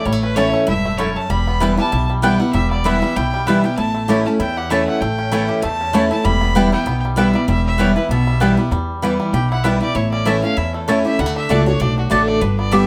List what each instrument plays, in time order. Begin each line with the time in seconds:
Already playing: five-string banjo E4
0.05 upright bass A1, steel-string acoustic guitar A2, five-string banjo G3, fiddle C#5
0.12 five-string banjo A3
0.23 five-string banjo C#4, fiddle B4
0.35 steel-string acoustic guitar E3 A3 C#4 E4, mandolin A3 E4 C#5 A5, five-string banjo E4, fiddle C#5
0.53 five-string banjo A3
0.67 upright bass E1, steel-string acoustic guitar G2, five-string banjo E4, fiddle E5
0.85 five-string banjo A3
0.97 steel-string acoustic guitar F#2, mandolin A3 E4 C#5 A5, five-string banjo C#4, fiddle C#5
1.16 five-string banjo A3, fiddle A5
1.30 upright bass E1, steel-string acoustic guitar E2, five-string banjo G3, fiddle B5
1.47 five-string banjo B3
1.60 steel-string acoustic guitar E3 G3 B3 E4, mandolin B3 E4 B4 G5, five-string banjo E4
1.77 five-string banjo G3, steel-string acoustic guitar B3 E4, fiddle A5
1.92 upright bass B1, steel-string acoustic guitar B2, five-string banjo E4
2.10 five-string banjo G3
2.22 steel-string acoustic guitar E3 G3 B3 E4, mandolin B3 E4 B4 G5, five-string banjo B3, fiddle G5
2.39 five-string banjo G3, steel-string acoustic guitar B3 E4, fiddle F#5
2.53 upright bass E1, steel-string acoustic guitar E2, five-string banjo G3, fiddle E5
2.70 five-string banjo B3, fiddle D5
2.84 steel-string acoustic guitar E3 G3 B3 E4, mandolin B3 E4 B4 G5, five-string banjo E4, fiddle E5
3.02 five-string banjo G3, steel-string acoustic guitar B3 E4
3.16 upright bass B1, steel-string acoustic guitar B2, five-string banjo E4, fiddle G5
3.34 five-string banjo G3
3.46 steel-string acoustic guitar E3 G3 B3 E4, five-string banjo B3, mandolin B3 E4 B4 G5, fiddle E5
3.64 five-string banjo G3, steel-string acoustic guitar B3 E4, fiddle G5
3.77 upright bass A1, steel-string acoustic guitar A2, five-string banjo E4, fiddle A5
3.95 five-string banjo A3
4.08 steel-string acoustic guitar E3 A3 C#4 E4, mandolin A3 E4 C#5 A5, five-string banjo G4
4.26 five-string banjo C#4, steel-string acoustic guitar C#4 E4, fiddle A5
4.40 upright bass E2, steel-string acoustic guitar E2, five-string banjo E4, fiddle G5
4.57 five-string banjo G4, fiddle F#5
4.70 steel-string acoustic guitar E3 A3 C#4 E4, mandolin A3 E4 C#5 A5, five-string banjo E4, fiddle E5
4.87 five-string banjo A3, fiddle F#5
5.01 upright bass A1, steel-string acoustic guitar A2, five-string banjo A3, fiddle G5
5.19 five-string banjo C#4
5.32 steel-string acoustic guitar E3 A3 C#4 E4, mandolin A3 E4 C#5 A5, five-string banjo E4
5.49 five-string banjo G4
5.62 steel-string acoustic guitar E2, upright bass E2, five-string banjo A3, fiddle A5
5.81 five-string banjo C#4
5.93 steel-string acoustic guitar E3 A3 C#4 E4, mandolin A3 E4 C#5 A5, five-string banjo A3
6.11 steel-string acoustic guitar C#4 E4, five-string banjo E4, fiddle A5
6.24 upright bass E1, steel-string acoustic guitar E2, five-string banjo G3, fiddle B5
6.41 five-string banjo B3
6.55 steel-string acoustic guitar E3 G3 B3 E4, five-string banjo G3, mandolin B3 E4 B4 G5
6.72 steel-string acoustic guitar B3 E4, five-string banjo E4, fiddle G5
6.86 upright bass B1, steel-string acoustic guitar B2, five-string banjo B3
7.05 five-string banjo G3
7.16 steel-string acoustic guitar E3 G3 B3 E4, mandolin B3 E4 B4 G5, five-string banjo B3, fiddle E5
7.33 five-string banjo G3, steel-string acoustic guitar B3 E4, fiddle D5
7.48 upright bass E1, steel-string acoustic guitar E2, five-string banjo G3, fiddle E5
7.66 fiddle E5
7.78 steel-string acoustic guitar E3 G3 B3 E4, five-string banjo G3, mandolin B3 E4 B4 G5, fiddle C#5
7.96 steel-string acoustic guitar B3 E4, five-string banjo E4, fiddle B4
8.09 upright bass B1, steel-string acoustic guitar B2, five-string banjo B3, fiddle E5
8.27 five-string banjo G3
8.40 steel-string acoustic guitar E3 G3 B3 E4, mandolin B3 E4 B4 G5, five-string banjo B3
8.57 five-string banjo G3, steel-string acoustic guitar B3 E4
8.71 upright bass E2, steel-string acoustic guitar E2, five-string banjo G3
9.02 steel-string acoustic guitar E3 G3 B3 E4, five-string banjo E3, mandolin B3 E4 B4 G5
9.20 five-string banjo G3
9.33 upright bass B1, steel-string acoustic guitar B2, five-string banjo G4, fiddle G5
9.50 five-string banjo E4, fiddle F#5
9.63 steel-string acoustic guitar E3 G3 B3 E4, five-string banjo G3, mandolin B3 E4 B4 G5, fiddle E5
9.81 steel-string acoustic guitar B3 E4, five-string banjo G4, fiddle D5
9.95 upright bass A1, steel-string acoustic guitar A2, five-string banjo E4, fiddle C#5
10.11 five-string banjo C#4, fiddle D5
10.25 steel-string acoustic guitar E3 A3 C#4 E4, mandolin A3 E4 C#5 A5, five-string banjo A3, fiddle E5
10.43 five-string banjo C#4, steel-string acoustic guitar C#4 E4, fiddle F5
10.57 steel-string acoustic guitar E2, upright bass E2, five-string banjo E4, fiddle E5
10.74 five-string banjo A3, fiddle A4
10.88 steel-string acoustic guitar E3 A3 C#4 E4, mandolin A3 E4 C#5 A5, five-string banjo E4, fiddle C#5
11.04 steel-string acoustic guitar C#4 E4, five-string banjo G4, fiddle E5
11.19 upright bass D2, steel-string acoustic guitar D3, five-string banjo G3, fiddle F#5
11.26 five-string banjo A3
11.36 five-string banjo D4, fiddle E5
11.49 upright bass C#2, steel-string acoustic guitar D3 A3 D4 F#4, mandolin A3 F#4 D5 A5, five-string banjo A3, fiddle D5
11.66 five-string banjo D4, steel-string acoustic guitar D4 F#4, fiddle C#5
11.80 upright bass B1, steel-string acoustic guitar A2, five-string banjo D4, fiddle D5
11.98 five-string banjo D4, fiddle F#4
12.10 upright bass A1, steel-string acoustic guitar D3 A3 D4 F#4, mandolin A3 F#4 D5 A5, five-string banjo D4, fiddle A4
12.28 five-string banjo D4, fiddle D5
12.41 upright bass G1, steel-string acoustic guitar G2, five-string banjo D4, fiddle B4
12.58 five-string banjo B3, fiddle D5
12.71 steel-string acoustic guitar D3 G3 B3 G4, five-string banjo G3, mandolin B3 G4 D5 G5, fiddle E5